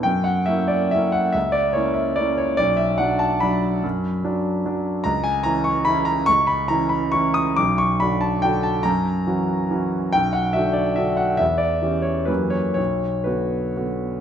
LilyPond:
\new Staff \with { instrumentName = "Grand piano" } { \time 3/4 \key b \minor \tempo 4 = 142 << { g''8 fis''8 e''8 d''8 e''8 fis''8 | e''8 d''8 cis''8 e''8 d''8 cis''8 | d''8 e''8 fis''8 a''8 b''4~ | b''2. |
ais''8 gis''8 ais''8 cis'''8 b''8 ais''8 | cis'''8 b''8 ais''8 b''8 cis'''8 dis'''8 | d'''8 cis'''8 b''8 a''8 g''8 a''8 | ais''2. |
g''8 fis''8 e''8 d''8 e''8 fis''8 | e''8 d''4 cis''8 b'8 cis''8 | cis''4 b'2 | } \\ { fis,4 <ais cis' e'>4 <ais cis' e'>4 | cis,4 <ais cis' e'>4 <ais cis' e'>4 | b,,4 <fis d'>4 <fis d'>4 | fis,4 <fis d'>4 <fis d'>4 |
cis,4 <e cis' e'>4 <e cis' e'>4 | cis,4 <e cis' e'>4 <e cis' e'>4 | b,,4 <d d' fis'>4 <d d' fis'>4 | fis,4 <e cis' fis'>4 <e cis' fis'>4 |
b,,4 <d d' fis'>4 <d d' fis'>4 | e,4 <e cis' g'>4 <fis, e ais g'>4 | b,,4 <d b fis'>4 <d b fis'>4 | } >> }